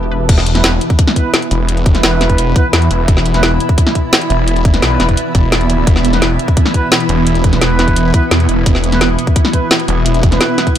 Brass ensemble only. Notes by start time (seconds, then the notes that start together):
Already playing: B3 E4 B4
0.55 B3 E4 B4
1.16 B3 E4 B4
1.95 B3 E4 B4
2.56 B3 E4 B4
3.34 B3 E4 B4
4.74 B3 E4 B4
6.13 B3 E4 B4
6.74 B3 E4 B4
7.53 B3 E4 B4
8.14 B3 E4 B4
8.92 B3 E4 B4
9.53 B3 E4 B4
10.32 B3 E4 B4